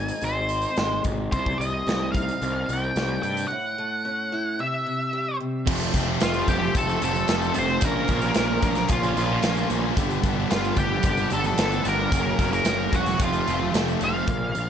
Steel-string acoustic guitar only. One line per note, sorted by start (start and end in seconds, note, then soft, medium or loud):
0.00 0.51 G#2 medium
0.00 0.76 G#3 medium
0.00 0.21 C4 medium
0.00 1.32 D#4 medium
0.23 1.32 C4 medium
0.50 1.04 D#3 medium
0.77 1.32 G#3 medium
1.05 1.32 D#3 medium
1.32 2.68 C3 medium
1.59 2.95 G3 medium
1.87 2.40 C4 medium
2.13 3.50 D#4 medium
2.42 3.51 C4 medium
2.69 3.22 C3 medium
2.96 3.50 G3 medium
3.23 3.51 C3 medium
3.51 4.59 A2 medium
3.78 4.59 A3 medium
4.05 4.59 C#4 medium
4.32 4.59 E4 medium
4.59 4.85 C3 medium
4.86 5.39 C3 medium
5.13 5.67 G3 medium
5.40 5.67 C3 medium
14.27 14.53 A#2 medium
14.27 14.53 F3 medium
14.27 14.53 A#3 medium
14.55 14.69 A#2 medium
14.55 14.69 F3 medium